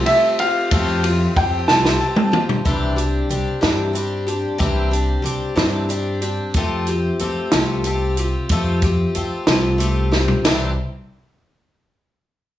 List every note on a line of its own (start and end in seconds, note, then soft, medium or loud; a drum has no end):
0.06 0.39 A3 medium
0.06 0.40 C4 medium
0.06 0.40 F4 medium
0.06 0.39 G4 medium
0.06 0.40 E5 medium
0.06 ride medium
0.39 0.71 C4 soft
0.39 0.71 F4 soft
0.39 0.71 G4 medium
0.39 1.40 F5 medium
0.39 ride medium
0.71 1.26 F2 loud
0.71 1.04 F3 medium
0.71 1.04 A3 medium
0.71 1.04 C4 medium
0.71 1.03 F4 medium
0.71 1.02 G4 loud
0.71 kick loud
0.71 ride medium
1.04 1.36 C4 medium
1.04 1.36 F4 medium
1.04 1.36 G4 medium
1.04 ride medium
1.36 1.63 F2 medium
1.36 1.69 A3 medium
1.36 1.69 C4 medium
1.36 1.68 F4 medium
1.36 1.67 G4 medium
1.36 1.70 G5 loud
1.36 kick medium
1.36 ride medium
1.68 1.95 C2 medium
1.68 2.02 F3 medium
1.68 1.98 A3 medium
1.68 1.99 C4 medium
1.68 1.99 F4 medium
1.68 2.00 G4 medium
1.68 2.37 A5 medium
1.68 snare medium
1.85 snare medium
1.99 2.33 A3 medium
1.99 2.32 C4 medium
1.99 2.32 F4 medium
1.99 2.30 G4 medium
2.16 mid tom medium
2.32 2.65 C4 soft
2.32 2.66 F4 soft
2.32 2.65 G4 medium
2.32 mid tom loud
2.49 floor tom loud
2.65 3.20 C2 medium
2.65 2.98 C3 medium
2.65 2.98 E3 medium
2.65 2.97 G3 medium
2.65 2.96 C4 medium
2.65 2.96 D4 medium
2.65 2.95 G4 medium
2.65 kick medium
2.65 closed hi-hat medium
2.96 3.28 G3 soft
2.96 3.29 C4 medium
2.96 3.29 D4 medium
2.96 3.30 G4 medium
2.96 closed hi-hat medium
3.29 3.44 C2 medium
3.29 3.61 G3 medium
3.29 3.61 C4 medium
3.29 3.61 D4 medium
3.29 3.60 G4 medium
3.29 closed hi-hat medium
3.61 4.44 G2 medium
3.61 3.95 C3 medium
3.61 3.95 E3 medium
3.61 3.92 G3 medium
3.61 3.93 C4 medium
3.61 3.94 D4 medium
3.61 3.95 G4 medium
3.61 snare loud
3.61 closed hi-hat medium
3.93 4.27 G3 medium
3.93 4.27 C4 medium
3.93 4.27 D4 medium
3.93 4.25 G4 medium
3.93 closed hi-hat medium
4.27 4.57 G3 soft
4.27 4.58 C4 soft
4.27 4.58 D4 soft
4.27 4.58 G4 medium
4.27 closed hi-hat medium
4.58 5.15 C2 medium
4.58 4.92 C3 medium
4.58 4.92 E3 medium
4.58 4.92 G3 medium
4.58 4.91 C4 medium
4.58 4.91 D4 medium
4.58 4.90 G4 loud
4.58 kick loud
4.58 closed hi-hat medium
4.91 5.21 G3 medium
4.91 5.22 C4 soft
4.91 5.23 D4 medium
4.91 5.24 G4 medium
4.91 closed hi-hat medium
5.22 5.38 C2 medium
5.22 5.55 G3 medium
5.22 5.55 C4 medium
5.22 5.54 D4 medium
5.22 5.54 G4 medium
5.22 closed hi-hat medium
5.56 6.38 G2 medium
5.56 5.90 C3 medium
5.56 5.90 E3 medium
5.56 5.88 G3 medium
5.56 5.88 C4 medium
5.56 5.89 D4 medium
5.56 5.89 G4 medium
5.56 snare loud
5.56 closed hi-hat medium
5.89 6.22 G3 medium
5.89 6.21 C4 medium
5.89 6.21 D4 medium
5.89 6.20 G4 medium
5.89 closed hi-hat medium
6.21 6.55 G3 soft
6.21 6.55 C4 soft
6.21 6.55 D4 soft
6.21 6.55 G4 medium
6.21 closed hi-hat medium
6.54 7.09 F2 medium
6.54 6.88 F3 medium
6.54 6.88 A3 medium
6.54 6.88 C4 medium
6.54 6.88 F4 medium
6.54 6.87 G4 loud
6.54 kick loud
6.54 closed hi-hat medium
6.87 7.20 C4 soft
6.87 7.21 F4 soft
6.87 7.20 G4 medium
6.87 closed hi-hat medium
7.19 7.34 F2 medium
7.19 7.52 A3 medium
7.19 7.52 C4 medium
7.19 7.51 F4 medium
7.19 7.51 G4 medium
7.19 closed hi-hat medium
7.52 8.34 C2 medium
7.52 7.85 F3 medium
7.52 7.84 A3 medium
7.52 7.85 C4 medium
7.52 7.85 F4 medium
7.52 7.85 G4 medium
7.52 snare loud
7.52 closed hi-hat medium
7.84 8.18 A3 medium
7.84 8.18 C4 medium
7.84 8.18 F4 medium
7.84 8.17 G4 medium
7.84 closed hi-hat medium
8.17 8.51 C4 soft
8.17 8.51 F4 medium
8.17 8.51 G4 medium
8.17 closed hi-hat medium
8.49 9.04 F2 medium
8.49 8.83 F3 medium
8.49 8.83 A3 medium
8.49 8.84 C4 medium
8.49 8.83 F4 medium
8.49 8.83 G4 loud
8.49 kick loud
8.49 closed hi-hat medium
8.82 9.14 C4 medium
8.82 9.15 F4 medium
8.82 9.16 G4 medium
8.82 kick medium
8.82 closed hi-hat medium
9.15 9.29 F2 medium
9.15 9.47 A3 medium
9.15 9.47 C4 medium
9.15 9.47 F4 medium
9.15 9.46 G4 medium
9.15 closed hi-hat medium
9.47 10.29 C2 medium
9.47 9.81 F3 medium
9.47 9.77 A3 medium
9.47 9.78 C4 medium
9.47 9.79 F4 medium
9.47 9.79 G4 medium
9.47 snare loud
9.47 closed hi-hat medium
9.78 10.12 A3 medium
9.78 10.12 C4 medium
9.78 10.12 F4 medium
9.78 10.10 G4 medium
9.78 closed hi-hat medium
10.12 10.45 C4 soft
10.12 10.45 F4 medium
10.12 10.45 G4 medium
10.12 snare medium
10.28 floor tom medium
10.45 10.75 C2 medium
10.45 10.71 C3 medium
10.45 10.71 E3 medium
10.45 10.71 G3 medium
10.45 10.72 C4 medium
10.45 10.72 D4 medium
10.45 10.72 G4 medium
10.45 snare loud
10.45 ride bell medium